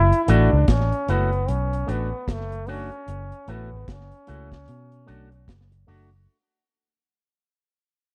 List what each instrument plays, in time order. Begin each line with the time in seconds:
Already playing: fingered electric bass F#1, trombone E4
0.12 closed hi-hat
0.24 trombone E4
0.28 fingered electric bass A1, clean electric guitar A3 E4 F#4, trombone D4, closed hi-hat
0.53 fingered electric bass C#2
0.68 fingered electric bass A1, trombone C#4, kick, snare, closed hi-hat
0.92 closed hi-hat
1.08 fingered electric bass F#1, clean electric guitar A3 E4 F#4, trombone B3, closed hi-hat
1.33 closed hi-hat
1.48 fingered electric bass B1, trombone C#4, closed hi-hat
1.73 closed hi-hat
1.87 fingered electric bass A1, clean electric guitar A3 D4 F#4, trombone B3, closed hi-hat
2.28 fingered electric bass F#1, trombone A3, kick, snare, closed hi-hat
2.52 muted clean electric guitar stroke, closed hi-hat
2.67 clean electric guitar A3 D4 F#4, trombone C#4, open hi-hat
2.92 closed hi-hat
3.08 fingered electric bass F#1, closed hi-hat
3.32 closed hi-hat
3.48 fingered electric bass A1, clean electric guitar A3 E4 F#4, trombone B3, closed hi-hat
3.73 fingered electric bass G#1
3.88 fingered electric bass F#1, trombone C#4, kick, snare, closed hi-hat
4.12 closed hi-hat
4.27 fingered electric bass C#2, clean electric guitar A3 E4 F#4, closed hi-hat
4.52 kick, snare, closed hi-hat
4.68 fingered electric bass B2, closed hi-hat
4.92 closed hi-hat
5.06 fingered electric bass B1, clean electric guitar A3 D4 F#4, closed hi-hat
5.31 muted clean electric guitar stroke, closed hi-hat
5.48 fingered electric bass F#1, kick, snare, closed hi-hat
5.71 muted clean electric guitar stroke, closed hi-hat
5.87 fingered electric bass F#1, clean electric guitar A3 D4 F#4, open hi-hat